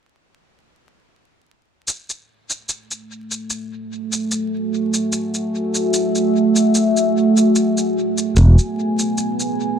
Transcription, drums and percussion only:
1.88 shaker soft
2.10 shaker soft
2.50 shaker soft
2.69 shaker soft
2.91 shaker soft
3.31 shaker soft
3.50 shaker soft
4.13 shaker soft
4.31 shaker soft
4.94 shaker soft
5.12 shaker soft
5.34 shaker soft
5.75 shaker soft
5.94 shaker soft
6.15 shaker soft
6.56 shaker soft
6.75 shaker soft
6.97 shaker soft
7.37 shaker soft
7.56 shaker soft
7.78 shaker soft
8.18 shaker soft
8.37 shaker soft
8.58 shaker soft
8.99 shaker soft
9.18 shaker soft
9.40 shaker soft

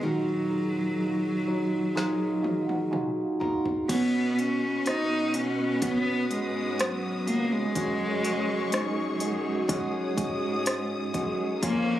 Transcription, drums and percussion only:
1.97 snare soft
2.44 high tom medium
2.69 high tom medium
2.93 mid tom medium
3.41 floor tom medium
3.66 floor tom medium
3.89 kick medium
3.89 closed hi-hat medium
3.89 crash medium
4.39 closed hi-hat medium
4.86 cross-stick medium
4.86 closed hi-hat medium
5.34 closed hi-hat medium
5.82 kick medium
5.82 closed hi-hat medium
6.31 closed hi-hat medium
6.79 cross-stick loud
6.79 closed hi-hat medium
7.27 closed hi-hat medium
7.75 kick medium
7.75 closed hi-hat medium
8.24 closed hi-hat medium
8.72 cross-stick medium
8.72 closed hi-hat medium
9.20 closed hi-hat medium
9.69 kick medium
9.69 closed hi-hat medium
10.18 kick medium
10.18 closed hi-hat medium
10.66 cross-stick loud
10.66 closed hi-hat medium
11.14 kick medium
11.14 closed hi-hat medium
11.63 kick medium
11.63 closed hi-hat medium

